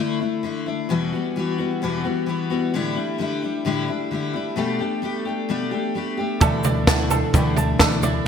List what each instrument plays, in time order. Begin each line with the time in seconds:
Already playing: steel-string acoustic guitar D3 A3, tonewheel organ D3 A3 E4
0.00 steel-string acoustic guitar D4 E4
0.20 steel-string acoustic guitar A3 D4 E4
0.43 steel-string acoustic guitar D3 A3 D4 E4
0.66 steel-string acoustic guitar A3 D4 E4
0.89 steel-string acoustic guitar E2 B2 E3 G3 B3 F#4, tonewheel organ G3 E4 F#4
1.13 steel-string acoustic guitar E3 G3 B3 F#4
1.36 steel-string acoustic guitar E3 G3 B3 F#4
1.58 steel-string acoustic guitar E3 G3 B3 F#4
1.82 steel-string acoustic guitar E2 B2 E3 G3 B3 F#4
2.04 steel-string acoustic guitar E3 G3 B3 F#4
2.26 steel-string acoustic guitar E3 G3 B3 F#4
2.50 steel-string acoustic guitar E3 G3 B3 F#4
2.74 steel-string acoustic guitar A2 D3 G3 D4 E4, tonewheel organ A3 D4 G4
2.96 steel-string acoustic guitar G3 D4 E4
3.18 steel-string acoustic guitar D3 G3 D4 E4
3.42 steel-string acoustic guitar G3 D4 E4
3.65 steel-string acoustic guitar A2 D3 G3 D4 E4
3.88 steel-string acoustic guitar G3 D4 E4
4.11 steel-string acoustic guitar D3 G3 D4 E4
4.33 steel-string acoustic guitar G3 D4 E4
4.56 steel-string acoustic guitar B2 G3 A3 D4 G4, tonewheel organ B3 A4
4.79 steel-string acoustic guitar A3 D4 G4
5.02 steel-string acoustic guitar G3 A3 D4 G4
5.25 steel-string acoustic guitar A3 D4 G4
5.49 steel-string acoustic guitar B2 G3 A3 D4 G4
5.71 steel-string acoustic guitar A3 D4 G4
5.95 steel-string acoustic guitar G3 A3 D4 G4
6.17 steel-string acoustic guitar A3 D4 G4
6.40 upright piano D2 D3 A3 D4 E4 D5 E5, upright bass D2, steel-string acoustic guitar D3 E3 A3 D4 E4, tonewheel organ D3 A3 E4, five-string banjo A4, kick, floor tom, shaker
6.64 steel-string acoustic guitar A3 D4 E4, five-string banjo D5, floor tom, shaker
6.87 steel-string acoustic guitar E3 A3 D4 E4, upright piano A3 D4 E4 D5 F#5, five-string banjo A5, kick, snare, clap, floor tom, shaker
7.10 steel-string acoustic guitar A3 D4 E4, five-string banjo A4, floor tom, shaker
7.33 upright bass D2, steel-string acoustic guitar D3 E3 A3 D4 E4, upright piano A3 D4 E4 D5 G5, kick, floor tom, shaker
7.55 steel-string acoustic guitar A3 D4 E4, five-string banjo A5, floor tom, shaker
7.79 upright bass D2, steel-string acoustic guitar E3 A3 D4 E4, upright piano A3 D4 E4 D5 E5, five-string banjo A4, kick, snare, clap, floor tom, shaker
8.03 steel-string acoustic guitar A3 D4 E4, five-string banjo D5, floor tom, shaker